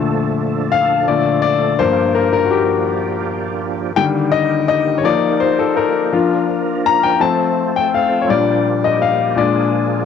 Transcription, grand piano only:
Already playing: A#2 D3 A3
0.72 F5
1.08 A#2 D3 A3 D5
1.42 D5
1.79 G2 F3 A#3 C5
2.15 A#4
2.33 A#4
2.45 F#4
2.51 G4
3.96 D3 D#3 G3 G5
4.31 D#5
4.68 D#5
4.98 C#5
5.04 F3 A#3 D#4 D5
5.40 C5
5.59 A4
5.77 A#4
6.12 F3 D4 F4
6.86 A#5
7.03 G5
7.20 F3 A3 C4 A5
7.76 G5
7.94 F5
8.22 C#5
8.29 A#2 G3 D4 D5
8.84 D#5
9.02 F5
9.36 A#2 G#3 D4 D5

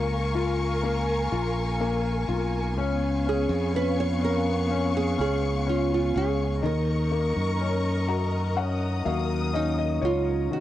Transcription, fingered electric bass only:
Already playing: C#2
1.32 A#1
2.29 B1
2.77 C#2
3.49 F2
5.19 C#2
6.16 C#2
6.64 D#2
7.36 F#2
9.06 D#2
10.03 C#2

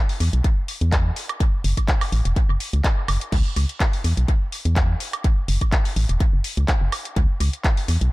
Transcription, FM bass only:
0.20 E2
0.33 B1
0.81 E2
1.64 F#1
2.12 A1
2.25 E1
2.49 F#1
2.73 C#2
3.08 F#1
3.32 C#2
3.56 C#2
4.04 E2
4.17 B1
4.65 E2
5.48 F#1
5.96 A1
6.09 E1
6.33 F#1
6.57 C#2
6.81 F#1
7.16 C#2
7.40 C#2
7.88 E2
8.01 B1

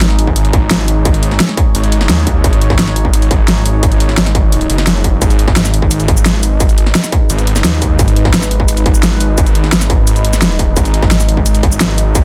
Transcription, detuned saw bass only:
Already playing: G#1
0.53 G#1
1.75 G#1
2.09 D#2
2.44 G#1
3.31 G#1
4.18 G#1
4.70 F#1
5.22 G#1
6.08 G#1
7.30 G#1
7.64 D#2
7.99 G#1
8.86 G#1
9.73 G#1
10.07 G#1
10.59 D#1
10.77 G#1
11.63 G#1

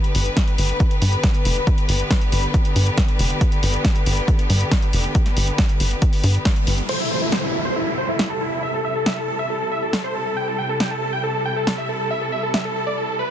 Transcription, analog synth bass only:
0.15 G1
0.58 G1
1.02 G2
1.45 F1
1.89 G1
2.32 G1
2.76 G2
3.19 F1
3.63 G1
4.06 G1
4.50 G2
4.93 F1
5.37 G1
5.80 G1
6.24 G2
6.67 G1

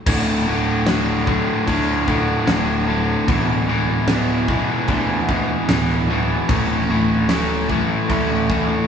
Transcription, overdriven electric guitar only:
0.07 D2 A2 D3
0.47 D2 A2 D3
0.86 D2 A2 D3
1.27 D2 A2 D3
1.67 D2 A2 D3
2.07 D2 A2 D3
2.46 D2 A2 D3
2.86 D2 A2 D3
3.27 E2 B2 E3
3.68 E2 B2 E3
4.08 E2 B2 E3
4.49 E2 B2 E3
4.88 E2 B2 E3
5.29 E2 B2 E3
5.69 E2 B2 E3
6.09 E2 B2 E3
6.48 A2 E3 A3
6.89 A2 E3 A3
7.29 A2 E3 A3
7.69 A2 E3 A3
8.10 A2 E3 A3
8.50 A2 E3 A3

